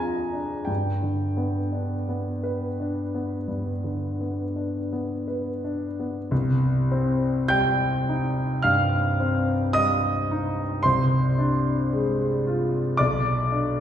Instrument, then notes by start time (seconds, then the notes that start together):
grand piano
Already playing: F2 F3 G#3 D4 G#4 G#5 A#5
0.00 F4
0.33 D4
0.65 G2 G5
1.03 D3
1.37 B3
1.72 D4
2.09 B3
2.43 B4
2.80 D4
3.15 B3
3.48 G2
3.84 D3
4.21 B3
4.56 D4
4.93 B3
5.28 B4
5.64 D4
6.00 B3
6.31 C2
6.92 C4
7.48 G3 G5 G6
8.09 D#4
8.62 G2 F5 F6
9.20 C4
9.73 G3 D#5 D#6
10.31 D#4
10.83 C2 C5 C6
11.38 D4
11.93 G#3
12.47 F4
12.97 B1 D5 D6
13.52 D4